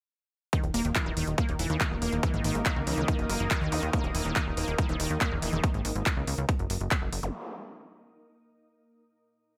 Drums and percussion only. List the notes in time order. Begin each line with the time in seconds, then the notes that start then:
0.53 kick, closed hi-hat
0.64 closed hi-hat
0.74 open hi-hat
0.85 closed hi-hat
0.95 kick, clap, closed hi-hat
1.17 open hi-hat
1.27 closed hi-hat
1.38 kick, closed hi-hat
1.49 closed hi-hat
1.59 open hi-hat
1.70 closed hi-hat
1.81 kick, clap, closed hi-hat
2.02 open hi-hat
2.12 closed hi-hat
2.23 kick, closed hi-hat
2.34 closed hi-hat
2.44 open hi-hat
2.55 closed hi-hat
2.66 kick, clap, closed hi-hat
2.87 open hi-hat
2.98 closed hi-hat
3.08 kick, closed hi-hat
3.19 closed hi-hat
3.30 open hi-hat
3.40 closed hi-hat
3.51 kick, clap, closed hi-hat
3.72 open hi-hat
3.83 closed hi-hat
3.93 kick, closed hi-hat
4.04 closed hi-hat
4.15 open hi-hat
4.25 closed hi-hat
4.36 kick, clap, closed hi-hat
4.57 open hi-hat
4.68 closed hi-hat
4.78 kick, closed hi-hat
4.89 closed hi-hat
5.00 open hi-hat
5.10 closed hi-hat
5.21 kick, clap, closed hi-hat
5.42 open hi-hat
5.53 closed hi-hat
5.64 kick, closed hi-hat
5.74 closed hi-hat
5.85 open hi-hat
5.96 closed hi-hat
6.06 kick, clap, closed hi-hat
6.27 open hi-hat
6.38 closed hi-hat
6.49 kick, closed hi-hat
6.59 closed hi-hat
6.70 open hi-hat
6.81 closed hi-hat
6.91 kick, clap, closed hi-hat
7.13 open hi-hat
7.23 closed hi-hat